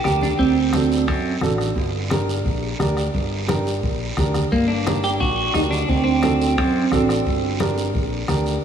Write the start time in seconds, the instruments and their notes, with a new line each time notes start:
0.04 fingered electric bass D2, upright piano D4 G4 A#4, clean electric guitar G4, bombo rim, high conga, short guiro
0.21 clean electric guitar D4, high conga, short guiro
0.39 fingered electric bass D2, clean electric guitar C4, bombo low, high conga, long guiro
0.73 upright piano D4 F#4 A4, bombo rim, high conga, short guiro
0.92 short guiro
1.07 fingered electric bass F#2, bombo low, high conga, long guiro
1.41 fingered electric bass A1, upright piano D4 F#4 A4, bombo rim, high conga, short guiro
1.58 bombo rim, short guiro
1.75 fingered electric bass G1, bombo low, high conga, long guiro
2.10 upright piano D4 G4 A#4, bombo rim, high conga, short guiro
2.29 short guiro
2.45 fingered electric bass A#1, bombo low, high conga, long guiro
2.79 fingered electric bass D2, upright piano D4 G4 A#4, bombo rim, high conga, short guiro
2.97 bombo rim, short guiro
3.14 fingered electric bass G1, bombo low, high conga, long guiro
3.47 upright piano D4 G4 A#4, bombo rim, high conga, short guiro
3.67 short guiro
3.83 fingered electric bass A#1, bombo low, high conga, long guiro
4.17 fingered electric bass D2, upright piano D4 G4 A#4, bombo low, bombo rim, high conga, short guiro
4.34 bombo rim, high conga, short guiro
4.52 fingered electric bass G1, clean electric guitar A#3, bombo low, high conga, long guiro
4.68 clean electric guitar D4
4.86 upright piano D4 G4 A#4, bombo rim, high conga, short guiro
5.04 clean electric guitar G4, short guiro
5.20 fingered electric bass A#1, clean electric guitar F#4, bombo low, high conga, long guiro
5.54 fingered electric bass D2, upright piano D4 G4 A#4, clean electric guitar D#4, bombo rim, high conga, short guiro
5.71 clean electric guitar D4, short guiro
5.88 fingered electric bass D2, clean electric guitar C4, bombo low, high conga, long guiro
6.04 clean electric guitar C4
6.22 upright piano D4 F#4 A4, bombo rim, high conga, short guiro
6.41 short guiro
6.57 fingered electric bass F#2, bombo low, high conga, long guiro
6.91 fingered electric bass A1, upright piano D4 F#4 A4, bombo low, bombo rim, high conga, short guiro
7.09 bombo rim, short guiro
7.26 fingered electric bass G1, bombo low, high conga, long guiro
7.60 upright piano D4 G4 A#4, bombo rim, high conga, short guiro
7.78 short guiro
7.94 fingered electric bass A#1, bombo low, high conga, long guiro
8.28 fingered electric bass D2, upright piano D4 G4 A#4, bombo rim, high conga, short guiro
8.46 short guiro